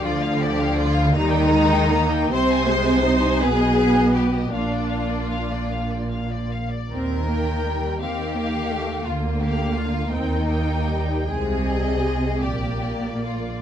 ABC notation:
X:1
M:6/8
L:1/16
Q:3/8=53
K:Eb
V:1 name="Violin section"
d f d f d f b g b g b g | c' a c' a c' a _c e c e c e | f d f d f d f d f d f d | z2 g4 f2 f4 |
z2 f4 g2 g4 | z2 e4 d2 d4 |]
V:2 name="Violin section"
F2 G2 F2 E6 | c6 A4 G2 | F8- F2 z2 | B6 G6 |
F2 G2 F2 E6 | A6 G4 F2 |]
V:3 name="Viola section"
F,6 G,2 A,2 B,2 | C2 A,2 E2 _C6 | D8- D z3 | C2 B,2 G,2 C2 B,2 =A,2 |
B,6 C2 B,2 G,2 | A,2 G,2 A,2 B,6 |]
V:4 name="Cello section" clef=bass
D,6 E,6 | C,6 _C,6 | B,,8- B,,2 z2 | E,6 E,6 |
D,6 E,6 | C,6 B,,6 |]
V:5 name="Double bass section" clef=bass
D,,6 E,,6 | C,,6 _C,,6 | B,,,8- B,,,2 z2 | E,,6 E,,6 |
D,,6 E,,6 | C,,6 B,,,6 |]